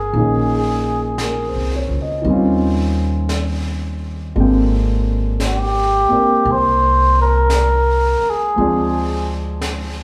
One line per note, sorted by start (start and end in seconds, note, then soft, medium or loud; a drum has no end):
0.00 0.10 G1 medium
0.00 0.12 D#3 soft
0.00 0.13 A#3 soft
0.00 0.15 C4 soft
0.00 0.16 D4 soft
0.00 0.16 F4 soft
0.00 1.92 G#4 medium
0.00 0.17 G5 soft
0.13 1.50 A#1 medium
0.13 2.20 D#3 soft
0.13 2.25 A#3 soft
0.13 2.26 C#4 soft
0.13 2.26 D#4 soft
0.13 brush sweep soft
0.19 2.27 G#4 soft
1.18 brush sweep soft
1.18 snare soft
1.18 hi-hat pedal soft
1.23 1.70 A#4 soft
1.47 1.91 C5 soft
1.55 1.87 C2 soft
1.75 2.06 C#5 soft
1.89 2.22 C#2 medium
2.02 2.37 D#5 soft
2.22 4.31 D#2 medium
2.22 4.33 D#3 soft
2.22 4.35 G3 soft
2.22 brush sweep soft
2.28 4.36 C4 soft
2.28 4.38 C#4 soft
2.33 4.39 F4 soft
3.29 brush sweep soft
3.29 snare soft
3.29 hi-hat pedal soft
4.34 6.06 G#1 medium
4.34 8.57 D3 soft
4.34 8.55 G#3 soft
4.34 brush sweep soft
4.38 6.07 A#3 soft
4.38 6.08 C4 soft
4.38 8.59 G5 soft
5.40 brush sweep soft
5.40 snare soft
5.40 hi-hat pedal soft
5.46 6.53 G4 medium
6.08 8.56 A#3 soft
6.08 8.56 C4 soft
6.08 8.57 D4 soft
6.08 muted upright bass stroke soft
6.13 8.58 A#4 soft
6.45 8.17 C2 medium
6.45 brush sweep soft
6.51 7.18 C5 medium
7.22 8.31 A#4 medium
7.50 brush sweep soft
7.50 snare soft
7.50 hi-hat pedal soft
8.22 muted upright bass stroke soft
8.30 9.31 G#4 medium
8.56 10.03 D2 medium
8.56 10.03 F3 soft
8.56 10.03 G#3 soft
8.56 10.03 C4 soft
8.56 10.03 D4 soft
8.56 brush sweep soft
8.61 10.03 G#4 medium
9.61 brush sweep soft
9.61 snare soft
9.61 hi-hat pedal soft